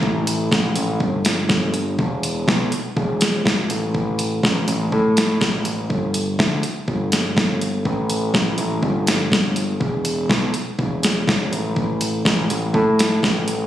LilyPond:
<<
  \new Staff \with { instrumentName = "Picked electric bass" } { \clef bass \time 4/4 \key e \phrygian \tempo 4 = 123 a,,4 a,,8 a,,8 g,,4 g,,4 | e,,4 b,,8 r8 e,,4 gis,,8 a,,8~ | a,,4 a,,8 a,,8 a,4 a,,4 | g,,4 d,8 r8 g,,4 g,,4 |
a,,4 a,,8 a,,8 g,,4 g,,4 | e,,4 b,,8 r8 e,,4 e,,8 a,,8~ | a,,4 a,,8 a,,8 a,4 a,,4 | }
  \new DrumStaff \with { instrumentName = "Drums" } \drummode { \time 4/4 bd8 hh8 <bd sn>8 hh8 bd8 <hh sn>8 <bd sn>8 hh8 | bd8 hh8 <bd sn>8 hh8 bd8 <hh sn>8 <bd sn>8 hh8 | bd8 hh8 <bd sn>8 hh8 bd8 <hh sn>8 <bd sn>8 hh8 | bd8 hh8 <bd sn>8 hh8 bd8 <hh sn>8 <bd sn>8 hh8 |
bd8 hh8 <bd sn>8 hh8 bd8 <hh sn>8 <bd sn>8 hh8 | bd8 hh8 <bd sn>8 hh8 bd8 <hh sn>8 <bd sn>8 hh8 | bd8 hh8 <bd sn>8 hh8 bd8 <hh sn>8 <bd sn>8 hh8 | }
>>